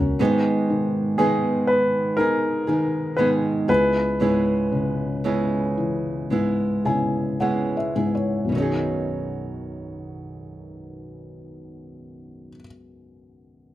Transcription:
Already playing: C#2 F#3 C#4 F#4 A#4
0.19 G#2 D#3 G#3 B3 D#4 G#4
0.70 D#3
1.18 G#2 D#3 G#3 B3 D#4 G#4
1.67 B4
2.17 G#3 B3 D#4 G#4 A#4
2.67 D#3 G#3 B3 D#4 G#4
3.17 G#2 D#3 G#3 B3 D#4 G#4 B4
3.68 C#2 B3 E4 G#4 B4
4.20 G#2 C#3 G#3 B3 E4 G#4
4.72 C#3
5.24 C#3 G#3 B3 E4 G#4
5.78 E3
6.30 G#2 G#3 B3 E4 G#4
6.85 C#3 B3 E4 G#4 G#5
7.40 C#3 G#3 B3 E4 G#4 F#5
7.77 E5
7.95 G#2 B3 E4 G#4
8.15 C#5
8.45 B1 F#2
8.49 B2 D#3
8.54 F#3 B3 C#4
8.60 D#4 G#4

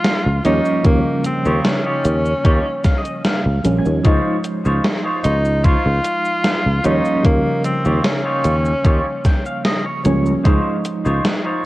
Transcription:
Already playing: F3 G#3 D#4 F4
0.04 snare, closed hi-hat, cabasa
0.26 C#2
0.44 D#2 F3 G3 A#3 C#4 D#4 F4 G4 C#5, closed hi-hat, cabasa
0.65 cabasa
0.83 D#2 C#3 F3 G3 A#3, kick, closed hi-hat, cabasa
1.25 C4, closed hi-hat, cabasa
1.45 D#2 D#4 F4 G4 C#5, cabasa
1.65 C#4, snare, closed hi-hat, cabasa
1.85 D#4 F4 G4 C#5
2.05 D#2, closed hi-hat, cabasa
2.25 cabasa
2.44 D#2 D#4 F4 G4 C#5, kick, closed hi-hat, cabasa
2.84 F5, muted clean electric guitar stroke, kick, snare, closed hi-hat, cabasa
2.98 D#5
3.05 closed hi-hat, cabasa
3.25 F5, snare, closed hi-hat, cabasa
3.46 C#2
3.64 A#1 F3 G3 A#3 C#4, closed hi-hat, cabasa
3.78 G#5
3.85 D#2, cabasa
4.03 C#2 F3 G#3 D#4 F4 C5 C#5, kick, closed hi-hat, cabasa
4.44 closed hi-hat, cabasa
4.65 C#2 D#4 F4 C5 C#5, cabasa
4.85 snare, closed hi-hat, cabasa
5.05 D#4 F4 C5 C#5
5.24 C#2 D#4, closed hi-hat, cabasa
5.45 cabasa
5.64 D#4 F4 C5 C#5, kick, closed hi-hat, cabasa
5.86 C#2
6.04 muted clean electric guitar stroke, closed hi-hat, cabasa
6.25 cabasa
6.44 snare, closed hi-hat, cabasa
6.66 C#2
6.84 D#2 F3 G3 A#3 C#4 D#4 F4 G4 C#5, closed hi-hat, cabasa
7.05 cabasa
7.23 D#2 C#3 F3 G3 A#3, kick, closed hi-hat, cabasa
7.64 C4, closed hi-hat, cabasa
7.85 D#2 D#4 F4 G4 C#5, cabasa
8.04 C#4, snare, closed hi-hat, cabasa
8.25 D#4 F4 G4 C#5
8.44 D#2, closed hi-hat, cabasa
8.65 cabasa
8.84 D#2 D#4 F4 G4 C#5, kick, closed hi-hat, cabasa
9.25 G5, muted clean electric guitar stroke, kick, snare, closed hi-hat, cabasa
9.46 F5, cabasa
9.65 D#5, snare, closed hi-hat, cabasa
9.86 C#5
10.04 C#2 F3 G3 A#3 C#4 C#5, closed hi-hat, cabasa
10.26 cabasa
10.44 C#2 F3 G#3 D#4 F4 C5 C#5, kick, closed hi-hat, cabasa
10.85 closed hi-hat, cabasa
11.05 C#2 D#4 F4 C5 C#5, cabasa
11.25 snare, closed hi-hat, cabasa
11.45 D#4 F4 C5 C#5

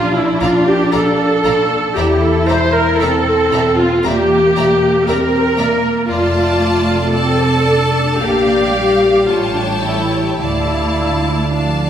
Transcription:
Already playing: A#2 F3 A#3 D4 F4 A#4 D5 F5
0.15 A#3 E4
0.41 A#1 F4 D5 F5 A#5
0.66 G4 A#4
0.92 A#1 A4 D5 F5 A#5
1.18 A#4
1.44 A#1 F4 D5 F5 A#5
1.70 A#3
1.95 E1 E2 E4 G4 D5 E5 A#5
2.21 A#3 A4
2.47 E1 C5 D5 E5 A#5
2.73 A#4
2.99 E1 C4 A4 D5 E5 A#5
3.24 A#4
3.51 E1 E4 D5 E5 A#5
3.77 A#3 F4
4.04 E1 E3 A#3 G4 D5 E5 A#5
4.29 A#3
4.56 E1 D5 E5 A#5
4.81 A#4
5.07 E1 C4 A#4 D5 E5 A#5
5.32 A#4
5.57 E1 A#3 E4 D5 E5 A#5
5.82 A#3
6.08 F1 F2 A3 F4 D5 A5
6.34 A3
6.60 D5
6.87 A4
7.12 C4 A4 D5 A5
7.39 A4
7.66 D4
7.93 A3
8.19 A#1 A#2 A#3 G4 D5 F5
8.46 A#3
8.73 G3 D5
9.00 A#4
9.27 A1 A2 F4 C#5 G5 A5
9.55 G3 D4
9.82 E4 A4
10.12 G4
10.39 D2 D3 A3 E4 D5 F5 A5
10.70 D4
10.98 F4
11.26 D5
11.54 F3 D4 D5 F5 A5
11.82 D5

